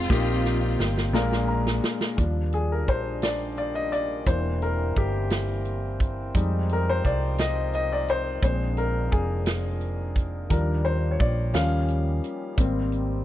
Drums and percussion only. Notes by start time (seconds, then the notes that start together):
0.10 kick, snare
0.45 snare
0.80 snare
0.98 snare
1.15 snare
1.32 snare
1.67 snare
1.84 snare
2.01 snare
2.18 kick, closed hi-hat
2.53 closed hi-hat
2.88 kick, closed hi-hat
3.22 snare, closed hi-hat
3.57 closed hi-hat
3.93 closed hi-hat
4.27 kick, closed hi-hat
4.62 closed hi-hat
4.96 kick, closed hi-hat
5.30 snare, closed hi-hat
5.65 closed hi-hat
6.00 kick, closed hi-hat
6.34 kick, closed hi-hat
6.69 closed hi-hat
7.05 kick, closed hi-hat
7.38 snare, closed hi-hat
7.73 closed hi-hat
8.08 closed hi-hat
8.42 kick, closed hi-hat
8.77 closed hi-hat
9.12 kick, closed hi-hat
9.46 snare, closed hi-hat
9.81 closed hi-hat
10.16 kick, closed hi-hat
10.50 kick, closed hi-hat
10.85 closed hi-hat
11.20 kick, closed hi-hat
11.54 snare, closed hi-hat
11.89 closed hi-hat
12.24 closed hi-hat
12.58 kick, closed hi-hat
12.92 closed hi-hat